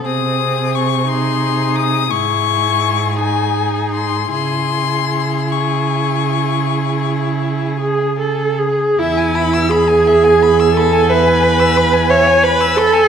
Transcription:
X:1
M:12/8
L:1/16
Q:3/8=56
K:C#m
V:1 name="Violin"
d'4 c'2 ^b4 d'2 c'6 g4 b2 | ^b6 c'12 z6 | [K:E] g24 |]
V:2 name="Violin"
G6 G6 G12 | G16- G6 z2 | [K:E] e g b e' b g e g b e' b g e g b e' b g e g b e' b g |]
V:3 name="Viola"
^B,6 D6 E6 D6 | E16- E2 G2 A2 G2 | [K:E] E4 G6 A2 B6 c2 B2 A2 |]
V:4 name="Cello" clef=bass
^B,,12 G,,12 | C,16- C,6 z2 | [K:E] E,,24 |]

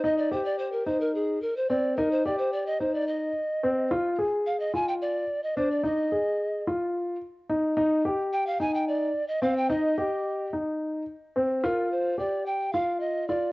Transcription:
X:1
M:7/8
L:1/16
Q:1/4=109
K:Eb
V:1 name="Pan flute"
e d c d c B c B A2 B c d2 | B c d c d e c d e6 | z4 f e a g d3 e c d | e6 z8 |
z4 g f a g d3 e f g | e6 z8 | B2 c2 d2 g2 f2 e2 d2 |]
V:2 name="Grand piano"
E2 G4 E4 z2 C2 | E2 G4 E4 z2 C2 | F2 A4 F4 z2 D2 | E2 A4 F4 z2 E2 |
E2 G4 E4 z2 C2 | E2 G4 E4 z2 C2 | F4 G4 F4 F2 |]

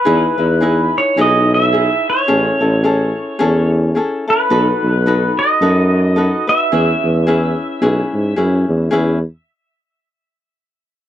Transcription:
X:1
M:4/4
L:1/8
Q:"Swing" 1/4=108
K:E
V:1 name="Pedal steel guitar"
B3 c d e2 c- | c4- c z2 B- | B3 d4 e- | e6 z2 |
z8 |]
V:2 name="Ukulele"
[DEGB] [DEB] [DEGB]2 [DEGB]2 [DEGB]2 | [CEGA] [CEA] [CEGA]2 [CEGA]2 [CEGA] [CEA] | [DFAB]2 [DFAB]2 [DFAB]2 [DFAB] [DFB] | [CEGB]2 [CEGB]2 [CEGB]2 [CEGB]2 |
[CEGB] z6 z |]
V:3 name="Tuba" clef=bass
E,, E,,3 B,,,4 | A,,, A,,,3 E,,3 z | B,,, B,,,3 F,,4 | E,, E,,3 B,,, G,, F,, E,, |
E,, z6 z |]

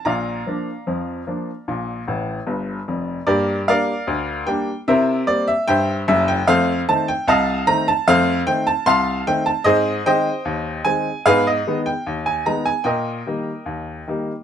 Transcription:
X:1
M:2/4
L:1/16
Q:1/4=75
K:Fmix
V:1 name="Upright piano"
[dfb]8- | [dfb]6 z2 | [GBd]2 [Bdf]4 g2 | [Bc=e]2 d e [ceg]2 e g |
[Acf]2 a g [efa]2 b a | [Acf]2 g a [fac']2 g a | [K:Ablyd] [Ace]2 [ceg]4 a2 | [A_cf] e2 g2 a b a |
[Beg]8 |]
V:2 name="Upright piano" clef=bass
[B,,,B,,]2 [F,B,D]2 [F,,F,]2 [F,B,D]2 | [B,,,B,,]2 [A,,,A,,]2 [G,,,G,,]2 [F,,,F,,]2 | [G,,B,]2 [G,B,D]2 D,,2 [G,B,D]2 | [C,=E]2 [G,B,C]2 G,,2 [_G,,,_G,,]2 |
[F,,A,]2 [E,A,C]2 C,,2 [E,A,C]2 | [F,,A,]2 [E,A,C]2 C,,2 [E,A,C]2 | [K:Ablyd] [A,,C]2 [E,A,C]2 E,,2 [E,A,C]2 | [A,,_C]2 [E,A,C]2 E,,2 [E,A,C]2 |
B,,2 [E,G,B,]2 E,,2 [E,G,B,]2 |]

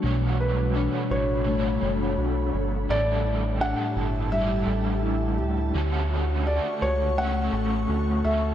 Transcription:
X:1
M:4/4
L:1/16
Q:1/4=84
K:Bm
V:1 name="Ambient pad"
[DAcb]16 | [Gea]16 | [Afc']16 |]
V:2 name="Felt piano"
z2 B4 c8- c2 | d4 f4 e6 z2 | z4 d2 c2 f6 e2 |]
V:3 name="Clean electric guitar"
B,,2 F2 D2 F2 A,2 c2 F2 c2 | A,,2 E2 D2 E2 G,2 A2 E2 G A | z2 F4 F2 A,2 A2 F2 A2 |]
V:4 name="Overdriven electric guitar"
[B,,F,A,DFc]4 [A,DFc]4 [B,,F,A,DFc]8 | [A,,D,G,DEA]4 [G,DEA]4 [A,,G,DEA]8 | [D,A,CFA]4 [A,FA]4 [A,CFA]6 [CFA]2 |]
V:5 name="Analog synth bass" clef=bass
B,,,4- B,,, z A,,,4 F,,,2 B,,,2 G,,,2 | A,,,4- A,,, z G,,,4 A,,,4 C,,2 | D,,4- D,, z C,,4 A,,,2 D,,2 D,,2 |]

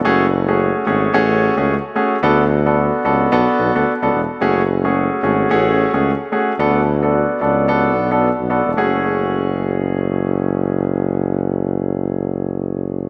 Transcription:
X:1
M:4/4
L:1/16
Q:"Swing 16ths" 1/4=110
K:F#m
V:1 name="Grand piano"
[A,CFG] z2 [A,CFG]3 [A,CFG]2 [A,CFG]3 [A,CFG] z2 [A,CFG] z | [B,DFA] z2 [B,DFA]3 [B,DFA]2 [B,DFA]3 [B,DFA] z [B,DFA] z2 | [A,CFG] z2 [A,CFG]3 [A,CFG]2 [A,CFG]3 [A,CFG] z2 [A,CFG] z | [B,DFA] z2 [B,DFA]3 [B,DFA]2 [B,DFA]3 [B,DFA] z2 [B,DFA] z |
[A,CFG]16- | [A,CFG]16 |]
V:2 name="Tuba" clef=bass
F,,,4- F,,, z G,,,2 A,,,3 C,,2 z3 | D,,4- D,, z C,,2 B,,, z B,,, D,, z C,, E,,, z | F,,,4- F,,, z G,,,2 A,,,3 C,,2 z3 | D,,4- D,, z C,,4 B,,,3 B,,,2 E,,, |
F,,,16- | F,,,16 |]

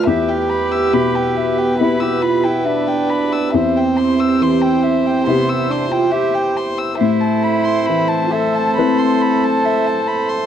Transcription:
X:1
M:4/4
L:1/16
Q:1/4=69
K:Am
V:1 name="Violin"
e g b e' b g e g b e' b g e g b e' | e g c' e' c' g e g c' e' c' g e g c' e' | e a b c' b a e a b c' b a e a b c' |]
V:2 name="Viola"
B16 | c16 | c16 |]
V:3 name="Analog synth pad"
[B,Ge]16 | [EGe]16 | [CAe]16 |]
V:4 name="Cello"
G8 E G F E D4 | C8 B,2 D F G2 z2 | E6 A8- A2 |]
V:5 name="Upright piano"
E,,4 B,,4 [B,EG]8 | E,,4 E,4 [C,EG]8 | A,,4 E,4 [CEB]8 |]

